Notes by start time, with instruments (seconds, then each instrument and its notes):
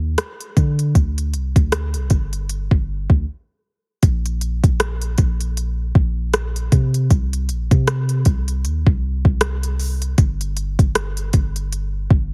Already playing: 808-style bass D#2
0.18 cross-stick, closed hi-hat
0.41 closed hi-hat
0.57 808-style bass D3, kick, closed hi-hat
0.79 closed hi-hat
0.95 808-style bass D2, kick, closed hi-hat
1.18 closed hi-hat
1.34 808-style bass C2, closed hi-hat
1.56 808-style bass D2, kick, closed hi-hat
1.72 cross-stick, closed hi-hat
1.94 808-style bass C2, closed hi-hat
2.10 808-style bass G1, kick, closed hi-hat
2.33 closed hi-hat
2.49 closed hi-hat
2.71 808-style bass G1, kick
3.10 808-style bass D2, kick
4.03 808-style bass A#1, kick, closed hi-hat
4.26 closed hi-hat
4.41 closed hi-hat
4.64 808-style bass A#1, kick, closed hi-hat
4.80 cross-stick, closed hi-hat
5.02 closed hi-hat
5.18 808-style bass A#1, kick, closed hi-hat
5.41 closed hi-hat
5.57 closed hi-hat
5.95 808-style bass A#1, kick
6.33 cross-stick, closed hi-hat
6.56 closed hi-hat
6.72 808-style bass C3, kick, closed hi-hat
6.94 closed hi-hat
7.10 808-style bass C2, kick, closed hi-hat
7.33 closed hi-hat
7.49 808-style bass A#1, closed hi-hat
7.71 808-style bass C3, kick, closed hi-hat
7.87 cross-stick, closed hi-hat
8.09 closed hi-hat
8.25 808-style bass C2, kick, closed hi-hat
8.48 closed hi-hat
8.65 808-style bass D#2, closed hi-hat
8.87 808-style bass C2, kick
9.25 808-style bass C2, kick
9.41 cross-stick, closed hi-hat
9.63 closed hi-hat
9.79 open hi-hat
10.02 closed hi-hat
10.18 808-style bass G1, kick, closed hi-hat
10.41 closed hi-hat
10.57 closed hi-hat
10.79 808-style bass G1, kick, closed hi-hat
10.95 cross-stick, closed hi-hat
11.17 closed hi-hat
11.33 808-style bass G1, kick, closed hi-hat
11.56 closed hi-hat
11.72 closed hi-hat
12.10 808-style bass G1, kick